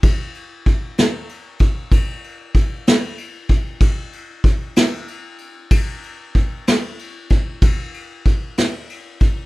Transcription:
\new DrumStaff \with { instrumentName = "Drums" } \drummode { \time 6/8 \tempo 4. = 63 <bd cymr>8 cymr8 <bd cymr>8 <cymr sn>8 cymr8 <bd cymr>8 | <bd cymr>8 cymr8 <bd cymr>8 <cymr sn>8 cymr8 <bd cymr>8 | <bd cymr>8 cymr8 <bd cymr>8 <cymr sn>8 cymr8 cymr8 | <bd cymr>8 cymr8 <bd cymr>8 <cymr sn>8 cymr8 <bd cymr>8 |
<bd cymr>8 cymr8 <bd cymr>8 <cymr sn>8 cymr8 <bd cymr>8 | }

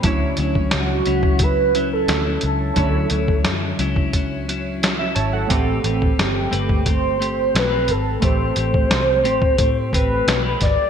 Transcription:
<<
  \new Staff \with { instrumentName = "Soft synth lead" } { \time 4/4 \key d \major \tempo 4 = 88 r4 fis'4 b'8. a'8. a'8~ | a'4. r2 r8 | r4 g'4 c''4 b'8 a'8 | c''2~ c''8 b'4 d''8 | }
  \new Staff \with { instrumentName = "Synth keys" } { \time 4/4 \key d \major << { r1 | r2. r16 e''16 <cis'' a''>16 <a' fis''>16~ | <a' fis''>16 r2. r8. | r1 | } \\ { <fis d' e' cis''>1 | <fis d' e' cis''>1 | <a c' g' a'>1 | <a c' g' a'>1 | } >> }
  \new Staff \with { instrumentName = "Clean electric guitar" } { \time 4/4 \key d \major <d fis cis' e'>8 <fis cis' e'>4 <fis cis' e'>8 <fis cis' e'>8 <fis cis' e'>8. <fis cis' e'>8. | <d fis cis' e'>8 <d fis cis' e'>4 <fis cis' e'>8 <fis cis' e'>8 <fis cis' e'>8. <fis cis' e'>8. | <a c' g' b'>8 <a c' g' b'>4 <a c' g' b'>8 <a c' g'>8 <a c' g'>8. <c' g' b'>8. | <a c' g'>8 <a c' g'>4 <a c' g'>8 <a c' g'>8 <a c' g' b'>8. <c' g' b'>8. | }
  \new Staff \with { instrumentName = "Picked electric bass" } { \clef bass \time 4/4 \key d \major d,8 d,8 cis,8 cis,4. d,8 cis,8 | d,8 d,8 fis,8 cis,2 gis,,8 | a,,8 a,,8 g,,8 g,,4. b,,8 gis,,8 | a,,8 a,,8 c,8 a,,8 a,8 a,,8 b,,8 gis,,16 r16 | }
  \new DrumStaff \with { instrumentName = "Drums" } \drummode { \time 4/4 <hh bd>8 hh16 bd16 <hh sn>8 hh16 bd16 <hh bd>8 hh8 <hh sn>8 hh8 | <hh bd>8 hh16 bd16 <hh sn>8 hh16 bd16 <hh bd>8 hh8 <hh sn>8 hh8 | <hh bd>8 hh16 bd16 <hh sn>8 hh16 bd16 <hh bd>8 hh8 <hh sn>8 hh8 | <hh bd>8 hh16 bd16 <hh sn>8 hh16 bd16 <hh bd>8 <hh bd>8 <hh sn>8 <hh bd sn>8 | }
>>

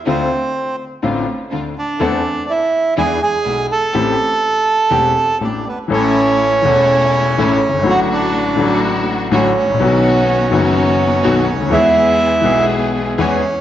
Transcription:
<<
  \new Staff \with { instrumentName = "Bandoneon" } { \time 4/4 \key a \minor \tempo 4 = 124 <c' c''>4. r2 <d' d''>8~ | <d' d''>4 <e' e''>4 <gis' gis''>8 <gis' gis''>4 <a' a''>8~ | <a' a''>2. <d' d''>8 <b b'>8 | \key a \major <cis' cis''>1 |
<fis' fis''>8 <d' d''>4. r4 <cis' cis''>4~ | <cis' cis''>1 | <e' e''>2 r4 <cis' cis''>4 | }
  \new Staff \with { instrumentName = "String section" } { \time 4/4 \key a \minor <c' d' f'>8 r4. <c' d' f'>8 r8 <c' d' f'>8 r8 | <e a c' e'>8 r4. <gis d' e'>8 r8 <gis d' e'>8 r8 | <a c' g'>8 r4. <a c' g'>8 r8 <a c' g'>8 r8 | \key a \major <a cis' e'>4. <a cis' e'>4. <a cis' e'>8 r8 |
<a d' fis'>4. <a d' fis'>4. <a d' fis'>8 r8 | <b dis' fis'>4. <b dis' fis'>4. <b dis' fis'>8 r8 | <b e' gis'>4. <b e' gis'>4. <b e' gis'>8 r8 | }
  \new Staff \with { instrumentName = "Grand piano" } { \clef bass \time 4/4 \key a \minor <d, d a c' f'>8 r4. <a,, a, d a c' f'>8 r8 <d, d>8 r8 | <e, e a c' a'>8 r4. <e, e b d' gis'>8 r8 <b,, b,>8 r8 | <a,, a, e a c' g'>8 r4. <e,, e, e a c' g'>8 r8 <a,, a,>8 r8 | \key a \major <a,, a, e a cis' a'>4. <e,, e, e a cis' a'>4. <a,, a, e a cis' a'>8 r32 fis,,32 g,,32 gis,,32 |
<a,, a, d fis a fis'>4. <a,, a, d fis a fis'>4. <a,, a, d fis a fis'>8 r32 gis,,32 a,,32 bes,,32 | <b,, b, dis fis b fis'>4. <fis,, fis, dis fis b fis'>4. <b,, b, dis fis b fis'>8 r32 cis,32 d,32 dis,32 | <e, e gis b gis'>4. <b,, b, e gis b gis'>4. <e, e gis b gis'>8 r8 | }
>>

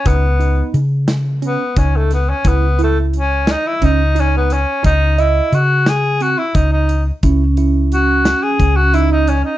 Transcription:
<<
  \new Staff \with { instrumentName = "Tenor saxophone" } { \time 7/8 \key cis \minor \tempo 4 = 88 b4 r4 b8 cis'16 a16 b16 cis'16 | b8 a8 cis'8 dis'16 e'16 dis'8 cis'16 b16 cis'8 | dis'8 e'8 fis'8 gis'8 fis'16 e'16 dis'16 dis'8 r16 | r4 fis'8. gis'8 fis'16 e'16 dis'16 cis'16 dis'16 | }
  \new Staff \with { instrumentName = "Tine electric piano" } { \time 7/8 \key cis \minor dis'8 dis'4 r8 cis'8 dis'4 | e'8 e'4 r8 cis'8 dis'4 | dis'8 dis''4 r8 bis8 dis'4 | e'8 e'4 r8 cis'8 dis'4 | }
  \new Staff \with { instrumentName = "Vibraphone" } { \time 7/8 \key cis \minor r2. r8 | r2. r8 | r2. r8 | cis'2.~ cis'8 | }
  \new Staff \with { instrumentName = "Fingered electric bass" } { \clef bass \time 7/8 \key cis \minor cis,4 cis4. cis,4 | cis,2 cis,4. | cis,4 cis4. cis,4 | cis,2 cis,4. | }
  \new DrumStaff \with { instrumentName = "Drums" } \drummode { \time 7/8 <hh bd>8 hh8 hh8 <hh sn>8 hh8 <hh bd>8 <hh sn>8 | <hh bd>8 hh8 hh8 <hh sn>8 <hh bd>8 hh8 hh8 | <hh bd>8 hh8 hh8 <hh sn>8 hh8 <hh bd>8 hh8 | <hh bd>8 hh8 hh8 <hh sn>8 <hh bd>8 hh8 hh8 | }
>>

